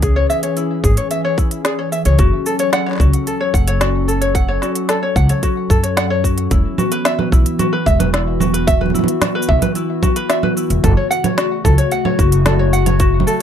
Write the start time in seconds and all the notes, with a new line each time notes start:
Already playing: C#2 E3 C#4 G#4
0.02 G#4, kick, closed hi-hat, shaker
0.16 C#5
0.30 E5, shaker
0.43 C#5, closed hi-hat, shaker
0.57 E4, closed hi-hat, shaker
0.84 G#1 G#4, kick, shaker
0.97 C#5, closed hi-hat, shaker
1.11 E5, closed hi-hat, shaker
1.25 C#5
1.38 E4, kick, shaker
1.51 closed hi-hat, shaker
1.65 G#4, snare, closed hi-hat, shaker
1.79 C#5
1.92 E5, shaker
2.05 C#2 C#5, closed hi-hat, shaker
2.19 F#1 F#3 F#4 A4, kick, closed hi-hat, shaker
2.46 A4, shaker
2.59 C#5, closed hi-hat, shaker
2.73 F#5, snare, closed hi-hat, shaker
2.86 C#5, snare
2.89 snare
2.91 snare
2.93 snare
2.95 snare
2.98 C#2 F#4, kick, snare, shaker
3.13 closed hi-hat, shaker
3.27 A4, closed hi-hat, shaker
3.41 C#5
3.54 F#1 F#5, kick, shaker
3.68 C#5, closed hi-hat, shaker
3.81 F#4, snare, closed hi-hat, shaker
4.08 A4, shaker
4.21 C#5, closed hi-hat, shaker
4.35 F#5, kick, closed hi-hat, shaker
4.48 C#5
4.62 F#4, snare, shaker
4.75 closed hi-hat, shaker
4.89 A4, snare, closed hi-hat, shaker
5.03 C#5
5.16 C#2 F#5, kick, shaker
5.29 C#5, closed hi-hat, shaker
5.43 F#4, kick, closed hi-hat, shaker
5.70 F#2 A4, kick, shaker
5.83 C#5, closed hi-hat, shaker
5.97 F#5, snare, closed hi-hat, shaker
6.10 C#5
6.24 F#4, kick, shaker
6.38 closed hi-hat
6.51 E1 E3 B3 E4 F#4, kick, closed hi-hat, shaker
6.78 F#4, low conga, shaker
6.92 B4, closed hi-hat, shaker
7.05 E5, snare, closed hi-hat, shaker
7.19 B4, low conga
7.32 B1 E4, kick, shaker
7.46 closed hi-hat, shaker
7.59 F#4, closed hi-hat, low conga, shaker
7.73 B4
7.86 E1 E5, kick, shaker
8.00 B4, closed hi-hat, low conga, shaker
8.13 E4, snare, closed hi-hat
8.40 F#4, low conga, shaker
8.54 B4, closed hi-hat, shaker
8.67 E5, kick, closed hi-hat, shaker
8.81 B4, low conga
8.86 low conga
8.90 low conga
8.94 E4, low conga, shaker
8.99 low conga
9.04 low conga
9.08 closed hi-hat, shaker
9.22 F#4, snare, closed hi-hat, low conga, shaker
9.35 B4
9.42 shaker
9.49 B1 E5, kick
9.62 B4, closed hi-hat, low conga, shaker
9.75 E4, closed hi-hat, shaker
10.03 F#4, kick, low conga, shaker
10.16 B4, closed hi-hat, shaker
10.30 E5, snare, closed hi-hat, shaker
10.43 B4, low conga
10.57 E4, shaker
10.70 E1, closed hi-hat, shaker
10.84 F#1 C#3 A3 F#4 A4, kick, closed hi-hat, low conga, shaker
10.97 C#5
11.11 F#5, shaker
11.24 C#5, closed hi-hat, low conga, shaker
11.38 F#4, snare, closed hi-hat, shaker
11.64 C#2 A4, kick, low conga, shaker
11.78 C#5, closed hi-hat, shaker
11.91 F#5, closed hi-hat, shaker
12.05 C#5, low conga
12.19 F#1 F#4, kick, shaker
12.32 closed hi-hat, shaker
12.46 A4, snare, closed hi-hat, low conga, shaker
12.59 C#5
12.73 F#5, shaker
12.86 C#5, closed hi-hat, low conga, shaker
13.00 F#4, kick, closed hi-hat, shaker
13.20 low conga
13.27 A4, shaker